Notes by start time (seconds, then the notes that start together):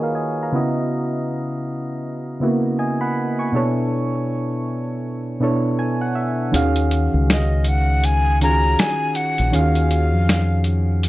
Already playing: D#3 A#3 F4 F#4 G#4 A#4 B4 C#5 D#5 G#5
0.03 A#4 F5
0.15 D#5 G#5
0.43 F5 A#5
0.52 C#3 B3 E4 F#4 D#5
2.40 C#3 B3 E4 F#4
2.44 A#3
2.79 D#5 G#5
3.01 F#5 B5
3.39 G#5 C#6
3.52 B2 B3 D4 E4 A4
3.56 C#5
5.40 B2 B3 D4 E4 A4 C#5
5.79 G#5
6.01 F#5
6.15 E5
6.52 D#2 D#3 C#4 F#4 G#4 F5, closed hi-hat
6.76 closed hi-hat
6.91 closed hi-hat
7.14 C#2
7.30 D#5, snare, closed hi-hat
7.64 F#5, closed hi-hat
8.04 G#5, closed hi-hat
8.41 D#3 C#4 F4 G#4 A#5, closed hi-hat
8.45 G#5
8.50 F#4
8.79 G#5, snare, closed hi-hat
9.15 F#5, closed hi-hat
9.38 A#1, closed hi-hat
9.52 D#2 D#3 C#4 F4 G#4 F5, closed hi-hat
9.60 F#4
9.75 closed hi-hat
9.91 closed hi-hat
10.14 F2
10.29 snare, closed hi-hat
10.64 closed hi-hat
11.03 closed hi-hat